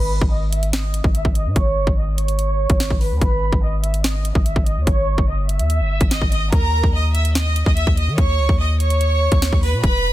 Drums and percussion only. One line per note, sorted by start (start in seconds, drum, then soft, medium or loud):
0.21 kick medium
0.53 closed hi-hat medium
0.63 closed hi-hat medium
0.73 snare loud
0.94 closed hi-hat medium
1.04 kick loud
1.15 closed hi-hat medium
1.25 kick loud
1.35 closed hi-hat medium
1.56 kick loud
1.56 closed hi-hat medium
1.87 kick medium
2.18 closed hi-hat medium
2.28 closed hi-hat medium
2.39 closed hi-hat medium
2.70 kick loud
2.70 closed hi-hat medium
2.80 snare loud
2.80 closed hi-hat medium
2.90 kick loud
3.01 open hi-hat medium
3.21 kick loud
3.21 closed hi-hat medium
3.52 kick medium
3.84 closed hi-hat medium
3.94 closed hi-hat medium
4.04 snare loud
4.25 closed hi-hat medium
4.35 kick loud
4.46 closed hi-hat medium
4.56 kick loud
4.66 closed hi-hat medium
4.87 kick loud
4.87 closed hi-hat medium
5.18 kick medium
5.49 closed hi-hat medium
5.59 closed hi-hat medium
5.70 closed hi-hat medium
6.01 kick loud
6.01 closed hi-hat medium
6.11 snare loud
6.11 closed hi-hat medium
6.21 kick loud
6.32 closed hi-hat medium
6.53 kick loud
6.53 closed hi-hat medium
6.84 kick medium
7.15 closed hi-hat medium
7.25 closed hi-hat medium
7.35 snare loud
7.56 closed hi-hat medium
7.66 kick loud
7.77 closed hi-hat medium
7.87 kick loud
7.97 closed hi-hat medium
8.18 kick loud
8.18 closed hi-hat medium
8.49 kick medium
8.80 closed hi-hat medium
8.90 closed hi-hat medium
9.01 closed hi-hat medium
9.32 kick loud
9.32 closed hi-hat medium
9.42 snare loud
9.42 closed hi-hat medium
9.53 kick loud
9.63 open hi-hat medium
9.84 kick loud
9.84 closed hi-hat medium